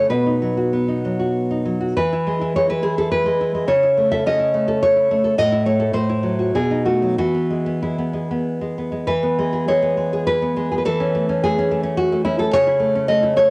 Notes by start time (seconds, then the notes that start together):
Already playing: A3 C#4 E4
0.10 B2 B4
0.26 D#4
0.42 F#3
0.57 F#4
0.73 B3
0.88 D#4
1.05 F#3
1.20 F#4
1.51 D#4
1.65 F#3
1.81 F#4
1.97 E3 B4
2.13 E4
2.27 G#3
2.41 E4
2.56 G#3 C#5
2.69 E4 B4
2.83 G#3 G#4
2.98 E4 A4
3.11 B4
3.26 G#3
3.41 E4
3.54 G#3
3.68 C#3 C#5
3.83 E4
3.97 A3
4.11 A4 E5
4.26 C#4 D#5
4.39 E4
4.54 A3
4.68 A4
4.83 C#5
4.96 E4
5.11 A3
5.24 A4
5.38 A2 D#5
5.52 E4
5.66 A3 C#5
5.80 A4
5.93 A2 C5
6.09 E4
6.23 F#3
6.39 F#4
6.55 B2 G#4
6.71 D#4
6.85 A3 F#4
7.02 F#3
7.18 E3 F#4
7.35 B3
7.50 G#3
7.66 B3
7.83 G#3 E4
7.98 B3
8.13 G#3
8.31 B3
8.61 G#3
8.78 B3
8.92 G#3
9.07 E3 B4
9.23 B3
9.39 G#3
9.53 G#4
9.68 G#3 C#5
9.82 B3
9.97 G#3
10.13 G#4
10.27 B4
10.42 B3
10.56 G#3
10.71 G#4
10.78 B4
10.85 E3 A4
11.00 C#4
11.15 A3
11.29 C#4
11.43 A3 G#4
11.58 C#4
11.71 A3
11.83 C#4
11.97 F#4
12.12 A3
12.25 C#4 E4
12.39 A3 A4
12.53 C#3 C#5
12.67 E4
12.80 A3
12.95 C#4
13.08 A3 D#5
13.23 E4
13.36 A3 C#5